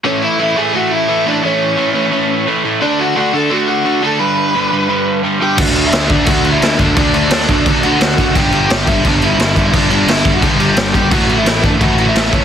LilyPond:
<<
  \new Staff \with { instrumentName = "Lead electric guitar" } { \time 4/4 \key a \major \tempo 4 = 173 <cis' cis''>8 <e' e''>8 <e' e''>8 <gis' gis''>8 <fis' fis''>8 <e' e''>4 <d' d''>8 | <cis' cis''>2. r4 | <d' d''>8 <fis' fis''>8 <fis' fis''>8 <a' a''>8 <fis' fis''>8 <fis' fis''>4 <a' a''>8 | <b' b''>2. r8 <g' g''>8 |
<fis' fis''>8. <e' e''>8. <d' d''>8 <fis' fis''>8. <e' e''>8. <d' d''>8~ | <d' d''>8 <d' d''>2 <fis' fis''>4. | <g' g''>4. <e' e''>8 <d' d''>8 <e' e''>4. | <d' d''>8 <d' d''>8 <e' e''>8. <fis' fis''>16 <g' g''>4. <g' g''>8 |
<fis' fis''>8. <e' e''>8. <d' d''>8 <fis' fis''>8. <e' e''>8. <cis' cis''>8 | }
  \new Staff \with { instrumentName = "Overdriven electric guitar" } { \clef bass \time 4/4 \key a \major <a, e a>4 <a, e a>8 <a, e a>8 <a, e a>4 <a, e a>8 <a, e a>8 | <a, e a>4 <a, e a>8 <a, e a>8 <a, e a>4 <a, e a>8 <a, e a>8 | <d a d'>4 <d a d'>8 <d a d'>8 <d a d'>4 <d a d'>8 <d a d'>8 | <g, d g>4 <g, d g>8 <g, d g>8 <g, d g>4 <g, d g>8 <g, d g>8 |
<d a d'>8 <d a d'>8 <d a d'>8 <d a d'>8 <d a d'>8 <d a d'>8 <d a d'>8 <d a d'>8 | <d a d'>8 <d a d'>8 <d a d'>8 <d a d'>8 <d a d'>8 <d a d'>8 <d a d'>8 <d a d'>8 | <g, d g>8 <g, d g>8 <g, d g>8 <g, d g>8 <g, d g>8 <g, d g>8 <g, d g>8 <g, d g>8 | <g, d g>8 <g, d g>8 <g, d g>8 <g, d g>8 <g, d g>8 <g, d g>8 <g, d g>8 <g, d g>8 |
<a, e a>8 <a, e a>8 <a, e a>8 <a, e a>8 <a, e a>8 <a, e a>8 <a, e a>8 <a, e a>8 | }
  \new Staff \with { instrumentName = "Overdriven electric guitar" } { \clef bass \time 4/4 \key a \major r1 | r1 | r1 | r1 |
<d a d'>1 | <d a d'>1 | <g, d g>1 | <g, d g>1 |
<a, e a>1 | }
  \new Staff \with { instrumentName = "Picked electric bass" } { \clef bass \time 4/4 \key a \major r1 | r1 | r1 | r1 |
d,8 d,8 d,4 d,4 d,8 d,8 | d,4 d,8 d,8 d,4 d,8 fis,,8 | g,,8 g,,8 g,,4 g,,4 g,,8 g,,8 | g,,4 g,,8 g,,8 g,,4 g,,8 g,,8 |
a,,8 a,,8 a,,4 a,,4 a,,8 a,,8 | }
  \new DrumStaff \with { instrumentName = "Drums" } \drummode { \time 4/4 r4 r4 r4 r4 | r4 r4 r4 r4 | r4 r4 r4 r4 | r4 r4 r4 r4 |
<cymc bd>8 cymc8 <cymc sn>8 <cymc bd>8 <cymc bd>8 cymc8 <cymc sn>8 <cymc bd>8 | <cymc bd>8 cymc8 <cymc sn>8 <cymc bd>8 <cymc bd>8 cymc8 <cymc sn>8 <cymc bd>8 | <cymc bd>8 cymc8 <cymc sn>8 <cymc bd>8 <cymc bd>8 cymc8 <cymc sn>8 <cymc bd>8 | <cymc bd>8 cymc8 <cymc sn>8 <cymc bd>8 <cymc bd>8 cymc8 <cymc sn>8 <cymc bd>8 |
<cymc bd>8 cymc8 <cymc sn>8 <cymc bd>8 <cymc bd>8 cymc8 <cymc sn>8 <cymc bd>8 | }
>>